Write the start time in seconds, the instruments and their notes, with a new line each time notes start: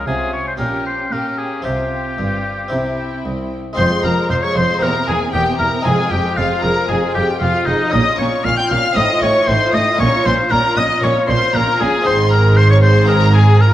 Already playing: harpsichord C#4 F4
0.07 double bass section C2, cello section C3, harpsichord C3, viola section C#4, violin section F4 G#5, oboe G#4
0.33 oboe C#5
0.48 oboe C5
0.57 double bass section A#1, cello section A#2, harpsichord A#2 C#4 G4, viola section C#4, violin section G4 G5, oboe A#4
0.87 oboe C5
1.11 double bass section A#2, cello section A#3, harpsichord A#3, viola section C#4, violin section G4 G5, oboe A#4
1.38 oboe G#4
1.62 double bass section C2, harpsichord C3 C4 F4, cello section C3, viola section C4, violin section F4 G5, oboe G4
2.18 double bass section G1, harpsichord G2, cello section G2
2.68 double bass section C2, harpsichord C3 C4 E4, cello section C3, viola section C4, violin section E4 G5
3.25 cello section C2, double bass section C2, harpsichord C2
3.73 harpsichord G#3 C4 F4
3.77 double bass section F1, harpsichord F2, cello section F2, viola section F3, violin section C5 C6, oboe C5
3.90 viola section G#3
4.03 double bass section F1, harpsichord F2, cello section F2, viola section F3, violin section A#4 A#5, oboe A#4
4.16 viola section G#3
4.30 double bass section F1, cello section F2, harpsichord F2, viola section F3, oboe C5, violin section C5 C6
4.42 viola section G#3, violin section C#5 C#6, oboe C#5
4.55 double bass section F1, harpsichord F2, cello section F2, viola section F3, violin section C5 C6, oboe C5
4.69 viola section G#3
4.79 double bass section E1, harpsichord E2 C4 G4, cello section E2, viola section A#3, violin section A#4 A#5, oboe A#4
4.95 viola section C4
5.08 double bass section E1, harpsichord E2, cello section E2, viola section A#3, violin section G#4 G#5, oboe G#4
5.21 viola section C4
5.33 double bass section E1, harpsichord E2, cello section E2, viola section A#3, violin section G4 G5, oboe G4
5.47 viola section C4
5.59 double bass section E1, cello section E2, harpsichord E2, viola section A#3, oboe A#4, violin section A#4 A#5
5.73 viola section C4
5.81 harpsichord G#3 C4 F4, oboe G#4, violin section G#5
5.85 double bass section F1, cello section F2, harpsichord F2, viola section G#4, violin section G#4
5.98 viola section F4
6.11 double bass section F1, harpsichord F2, cello section F2, oboe G4, violin section G4 G5, viola section G#4
6.24 viola section F4
6.37 double bass section F1, harpsichord F2, cello section F2, violin section F4 F5, oboe F4, viola section G#4
6.51 viola section F4
6.62 double bass section F1, cello section F2, harpsichord F2, viola section G#4, oboe A#4, violin section A#4 A#5
6.76 viola section F4
6.88 double bass section F1, cello section F2, harpsichord F2, oboe G#4, viola section G#4, violin section G#4 G#5
7.02 viola section F4
7.15 double bass section F1, cello section F2, harpsichord F2, oboe G4, violin section G4 G5, viola section G#4
7.28 viola section F4
7.40 double bass section F1, cello section F2, harpsichord F2, oboe F4, violin section F4 F5, viola section G#4
7.54 viola section F4
7.66 double bass section F1, cello section F2, harpsichord F2, oboe D#4, violin section D#4 D#5, viola section G#4
7.80 viola section F4
7.89 harpsichord A#2 C#4 F4, cello section A#2, viola section C#4, oboe D#5, violin section D#5 D#6
7.94 double bass section A#1
8.06 viola section F4
8.18 double bass section A#1, harpsichord A#2, cello section A#2, viola section C#4, oboe C#5, violin section C#5 C#6
8.32 viola section F4
8.44 double bass section A#1, harpsichord A#2, cello section A#2, viola section C#4, oboe F5, violin section F5 F6
8.57 viola section F4, oboe G5, violin section G5 G6
8.70 double bass section A#1, harpsichord A#2, cello section A#2, viola section C#4, oboe F5, violin section F5 F6
8.84 viola section F4
8.93 cello section A2, harpsichord A2 C4 F4, oboe D#5
8.97 double bass section A1, viola section D#4, violin section D#5 D#6
9.09 viola section F4
9.21 double bass section A1, harpsichord A2, cello section A2, viola section D#4, violin section C#5 C#6, oboe C#5
9.36 viola section F4
9.47 double bass section A1, cello section A2, harpsichord A2, viola section D#4, oboe C5, violin section C5 C6
9.62 viola section F4
9.73 double bass section A1, cello section A2, harpsichord A2, viola section D#4, oboe D#5, violin section D#5 D#6
9.88 viola section F4
9.95 harpsichord A#3 C#4 F4
9.99 double bass section A#1, cello section A#2, harpsichord A#2, viola section C#4, oboe C#5, violin section C#5 C#6
10.13 viola section F4
10.25 double bass section A#1, cello section A#2, harpsichord A#2, viola section C#4, violin section C5 C6, oboe C5
10.39 viola section F4
10.51 double bass section A#1, cello section A#2, harpsichord A#2, viola section C#4, oboe A#4, violin section A#4 A#5
10.65 viola section F4
10.77 double bass section A#1, harpsichord A#2, cello section A#2, viola section C#4, violin section D#5 D#6, oboe D#5
10.90 viola section F4
11.02 double bass section A#1, harpsichord A#2, cello section A#2, viola section C#4, violin section C#5 C#6, oboe C#5
11.16 viola section F4
11.28 double bass section A#1, cello section A#2, harpsichord A#2, viola section C#4, violin section C5 C6, oboe C5
11.42 viola section F4
11.53 double bass section A#1, cello section A#2, harpsichord A#2, viola section C#4, violin section A#4 A#5, oboe A#4
11.67 viola section F4
11.80 double bass section A#1, harpsichord A#2, cello section A#2, viola section C#4, violin section G#4 G#5, oboe G#4
11.94 viola section F4
12.01 harpsichord C4 D#4 G#4, violin section C6
12.06 double bass section G#1, cello section G#2, harpsichord G#2, viola section G#4, violin section C5, oboe C5
12.31 oboe A#4, violin section A#4 A#5
12.57 oboe C5, violin section C5 C6
12.71 oboe C#5, violin section C#5 C#6
12.83 oboe C5, violin section C5 C6
13.05 harpsichord C4 F4 G#4
13.09 oboe A#4, violin section A#4 A#5
13.35 oboe G#4, violin section G#4 G#5
13.61 viola section F4, oboe A#4, violin section A#4 A#5